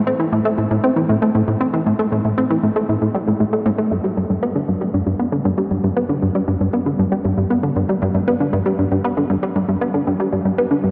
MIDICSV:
0, 0, Header, 1, 2, 480
1, 0, Start_track
1, 0, Tempo, 512821
1, 1742, Time_signature, 4, 2, 24, 8
1, 10213, End_track
2, 0, Start_track
2, 0, Title_t, "Analog synth bass"
2, 0, Program_c, 0, 38
2, 64, Note_on_c, 0, 60, 79
2, 134, Note_off_c, 0, 60, 0
2, 182, Note_on_c, 0, 52, 76
2, 253, Note_off_c, 0, 52, 0
2, 302, Note_on_c, 0, 45, 83
2, 373, Note_off_c, 0, 45, 0
2, 422, Note_on_c, 0, 57, 81
2, 493, Note_off_c, 0, 57, 0
2, 542, Note_on_c, 0, 45, 76
2, 613, Note_off_c, 0, 45, 0
2, 662, Note_on_c, 0, 45, 81
2, 733, Note_off_c, 0, 45, 0
2, 783, Note_on_c, 0, 60, 80
2, 853, Note_off_c, 0, 60, 0
2, 900, Note_on_c, 0, 52, 75
2, 972, Note_off_c, 0, 52, 0
2, 1022, Note_on_c, 0, 45, 77
2, 1093, Note_off_c, 0, 45, 0
2, 1142, Note_on_c, 0, 57, 76
2, 1213, Note_off_c, 0, 57, 0
2, 1261, Note_on_c, 0, 45, 80
2, 1333, Note_off_c, 0, 45, 0
2, 1383, Note_on_c, 0, 45, 75
2, 1454, Note_off_c, 0, 45, 0
2, 1502, Note_on_c, 0, 60, 80
2, 1573, Note_off_c, 0, 60, 0
2, 1624, Note_on_c, 0, 52, 76
2, 1694, Note_off_c, 0, 52, 0
2, 1743, Note_on_c, 0, 45, 83
2, 1814, Note_off_c, 0, 45, 0
2, 1863, Note_on_c, 0, 57, 78
2, 1933, Note_off_c, 0, 57, 0
2, 1984, Note_on_c, 0, 45, 81
2, 2054, Note_off_c, 0, 45, 0
2, 2103, Note_on_c, 0, 45, 74
2, 2174, Note_off_c, 0, 45, 0
2, 2225, Note_on_c, 0, 60, 84
2, 2294, Note_off_c, 0, 60, 0
2, 2344, Note_on_c, 0, 52, 81
2, 2414, Note_off_c, 0, 52, 0
2, 2463, Note_on_c, 0, 45, 76
2, 2533, Note_off_c, 0, 45, 0
2, 2582, Note_on_c, 0, 57, 78
2, 2653, Note_off_c, 0, 57, 0
2, 2704, Note_on_c, 0, 45, 78
2, 2774, Note_off_c, 0, 45, 0
2, 2824, Note_on_c, 0, 45, 74
2, 2894, Note_off_c, 0, 45, 0
2, 2943, Note_on_c, 0, 55, 75
2, 2985, Note_off_c, 0, 55, 0
2, 3065, Note_on_c, 0, 45, 79
2, 3135, Note_off_c, 0, 45, 0
2, 3183, Note_on_c, 0, 45, 81
2, 3225, Note_off_c, 0, 45, 0
2, 3303, Note_on_c, 0, 57, 76
2, 3373, Note_off_c, 0, 57, 0
2, 3422, Note_on_c, 0, 45, 98
2, 3465, Note_off_c, 0, 45, 0
2, 3541, Note_on_c, 0, 57, 76
2, 3648, Note_off_c, 0, 57, 0
2, 3661, Note_on_c, 0, 43, 85
2, 3733, Note_off_c, 0, 43, 0
2, 3780, Note_on_c, 0, 55, 78
2, 3852, Note_off_c, 0, 55, 0
2, 3904, Note_on_c, 0, 43, 75
2, 3974, Note_off_c, 0, 43, 0
2, 4023, Note_on_c, 0, 43, 77
2, 4093, Note_off_c, 0, 43, 0
2, 4143, Note_on_c, 0, 59, 87
2, 4213, Note_off_c, 0, 59, 0
2, 4264, Note_on_c, 0, 50, 76
2, 4334, Note_off_c, 0, 50, 0
2, 4383, Note_on_c, 0, 43, 74
2, 4454, Note_off_c, 0, 43, 0
2, 4503, Note_on_c, 0, 55, 75
2, 4573, Note_off_c, 0, 55, 0
2, 4623, Note_on_c, 0, 43, 80
2, 4693, Note_off_c, 0, 43, 0
2, 4741, Note_on_c, 0, 43, 76
2, 4812, Note_off_c, 0, 43, 0
2, 4861, Note_on_c, 0, 59, 74
2, 4933, Note_off_c, 0, 59, 0
2, 4981, Note_on_c, 0, 50, 79
2, 5053, Note_off_c, 0, 50, 0
2, 5102, Note_on_c, 0, 43, 84
2, 5173, Note_off_c, 0, 43, 0
2, 5220, Note_on_c, 0, 55, 74
2, 5292, Note_off_c, 0, 55, 0
2, 5343, Note_on_c, 0, 43, 74
2, 5413, Note_off_c, 0, 43, 0
2, 5464, Note_on_c, 0, 43, 76
2, 5534, Note_off_c, 0, 43, 0
2, 5583, Note_on_c, 0, 59, 82
2, 5654, Note_off_c, 0, 59, 0
2, 5703, Note_on_c, 0, 50, 77
2, 5773, Note_off_c, 0, 50, 0
2, 5825, Note_on_c, 0, 43, 77
2, 5894, Note_off_c, 0, 43, 0
2, 5943, Note_on_c, 0, 55, 81
2, 6014, Note_off_c, 0, 55, 0
2, 6063, Note_on_c, 0, 43, 87
2, 6133, Note_off_c, 0, 43, 0
2, 6184, Note_on_c, 0, 43, 78
2, 6254, Note_off_c, 0, 43, 0
2, 6302, Note_on_c, 0, 59, 77
2, 6373, Note_off_c, 0, 59, 0
2, 6422, Note_on_c, 0, 50, 76
2, 6493, Note_off_c, 0, 50, 0
2, 6543, Note_on_c, 0, 43, 81
2, 6613, Note_off_c, 0, 43, 0
2, 6662, Note_on_c, 0, 55, 77
2, 6733, Note_off_c, 0, 55, 0
2, 6783, Note_on_c, 0, 43, 77
2, 6853, Note_off_c, 0, 43, 0
2, 6903, Note_on_c, 0, 43, 79
2, 6973, Note_off_c, 0, 43, 0
2, 7023, Note_on_c, 0, 59, 85
2, 7093, Note_off_c, 0, 59, 0
2, 7143, Note_on_c, 0, 50, 75
2, 7213, Note_off_c, 0, 50, 0
2, 7264, Note_on_c, 0, 43, 81
2, 7334, Note_off_c, 0, 43, 0
2, 7386, Note_on_c, 0, 55, 76
2, 7455, Note_off_c, 0, 55, 0
2, 7506, Note_on_c, 0, 43, 87
2, 7575, Note_off_c, 0, 43, 0
2, 7623, Note_on_c, 0, 43, 76
2, 7694, Note_off_c, 0, 43, 0
2, 7746, Note_on_c, 0, 59, 81
2, 7815, Note_off_c, 0, 59, 0
2, 7865, Note_on_c, 0, 50, 77
2, 7934, Note_off_c, 0, 50, 0
2, 7983, Note_on_c, 0, 43, 88
2, 8053, Note_off_c, 0, 43, 0
2, 8103, Note_on_c, 0, 55, 76
2, 8173, Note_off_c, 0, 55, 0
2, 8224, Note_on_c, 0, 43, 76
2, 8294, Note_off_c, 0, 43, 0
2, 8345, Note_on_c, 0, 43, 80
2, 8414, Note_off_c, 0, 43, 0
2, 8465, Note_on_c, 0, 59, 83
2, 8534, Note_off_c, 0, 59, 0
2, 8584, Note_on_c, 0, 50, 77
2, 8654, Note_off_c, 0, 50, 0
2, 8703, Note_on_c, 0, 43, 81
2, 8773, Note_off_c, 0, 43, 0
2, 8825, Note_on_c, 0, 55, 78
2, 8894, Note_off_c, 0, 55, 0
2, 8945, Note_on_c, 0, 43, 83
2, 9015, Note_off_c, 0, 43, 0
2, 9065, Note_on_c, 0, 43, 76
2, 9135, Note_off_c, 0, 43, 0
2, 9184, Note_on_c, 0, 59, 77
2, 9254, Note_off_c, 0, 59, 0
2, 9304, Note_on_c, 0, 50, 76
2, 9374, Note_off_c, 0, 50, 0
2, 9427, Note_on_c, 0, 43, 86
2, 9495, Note_off_c, 0, 43, 0
2, 9545, Note_on_c, 0, 55, 77
2, 9614, Note_off_c, 0, 55, 0
2, 9664, Note_on_c, 0, 43, 77
2, 9734, Note_off_c, 0, 43, 0
2, 9782, Note_on_c, 0, 43, 77
2, 9853, Note_off_c, 0, 43, 0
2, 9905, Note_on_c, 0, 59, 85
2, 9974, Note_off_c, 0, 59, 0
2, 10022, Note_on_c, 0, 50, 78
2, 10093, Note_off_c, 0, 50, 0
2, 10143, Note_on_c, 0, 43, 71
2, 10213, Note_off_c, 0, 43, 0
2, 10213, End_track
0, 0, End_of_file